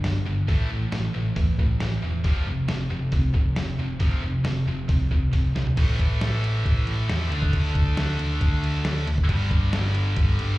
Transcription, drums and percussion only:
0.04 snare, open hi-hat
0.48 kick, open hi-hat
0.92 snare, open hi-hat
1.36 kick, open hi-hat
1.59 kick
1.80 snare, open hi-hat
2.24 kick, open hi-hat
2.69 snare, open hi-hat
3.12 kick, open hi-hat
3.35 kick
3.56 snare, open hi-hat
4.00 kick, open hi-hat
4.45 snare, open hi-hat
4.89 kick, open hi-hat
5.11 kick
5.33 kick, open hi-hat
5.56 snare
5.67 floor tom
5.77 kick, crash
5.99 kick, crash
6.21 snare, crash
6.44 crash
6.66 kick, crash
6.87 crash
7.09 snare, crash
7.32 crash
7.42 kick
7.53 kick, crash
7.75 kick, crash
7.97 snare, crash
8.19 crash
8.41 kick, crash
8.64 crash
8.85 snare, crash
9.07 crash
9.18 kick
9.29 kick, crash
9.51 kick, crash
9.73 snare, crash
9.84 snare
9.95 crash
10.16 kick, crash
10.39 crash

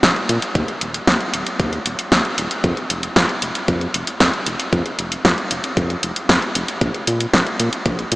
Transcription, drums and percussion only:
0.03 kick, snare, closed hi-hat
0.16 closed hi-hat
0.29 closed hi-hat
0.42 closed hi-hat
0.55 kick, closed hi-hat
0.68 closed hi-hat
0.81 closed hi-hat
0.94 closed hi-hat
1.07 kick, snare, closed hi-hat
1.20 closed hi-hat
1.34 closed hi-hat
1.47 closed hi-hat
1.60 kick, closed hi-hat
1.73 closed hi-hat
1.86 closed hi-hat
1.99 closed hi-hat
2.12 kick, snare, closed hi-hat
2.25 closed hi-hat
2.38 closed hi-hat
2.51 closed hi-hat
2.64 kick, closed hi-hat
2.77 closed hi-hat
2.90 closed hi-hat
3.03 closed hi-hat
3.16 kick, snare, closed hi-hat
3.29 closed hi-hat
3.42 closed hi-hat
3.55 closed hi-hat
3.68 kick, closed hi-hat
3.81 closed hi-hat
3.94 closed hi-hat
4.07 closed hi-hat
4.20 kick, snare, closed hi-hat
4.33 closed hi-hat
4.46 closed hi-hat
4.60 closed hi-hat
4.73 kick, closed hi-hat
4.86 closed hi-hat
4.99 closed hi-hat
5.12 closed hi-hat
5.25 kick, snare, closed hi-hat
5.38 closed hi-hat
5.51 closed hi-hat
5.64 closed hi-hat
5.77 kick, closed hi-hat
5.90 closed hi-hat
6.03 closed hi-hat
6.16 closed hi-hat
6.29 kick, snare, closed hi-hat
6.42 closed hi-hat
6.55 closed hi-hat
6.68 closed hi-hat
6.81 kick, closed hi-hat
6.94 closed hi-hat
7.07 closed hi-hat
7.20 closed hi-hat
7.34 kick, snare, closed hi-hat
7.47 closed hi-hat
7.60 closed hi-hat
7.73 closed hi-hat
7.86 kick, closed hi-hat
7.99 closed hi-hat
8.12 closed hi-hat

